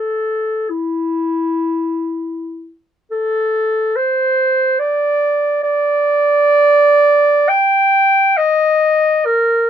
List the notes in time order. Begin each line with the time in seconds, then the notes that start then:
Already playing: A4
0.70 E4
3.11 A4
3.96 C5
4.79 D5
5.63 D5
7.49 G5
8.37 D#5
9.26 A#4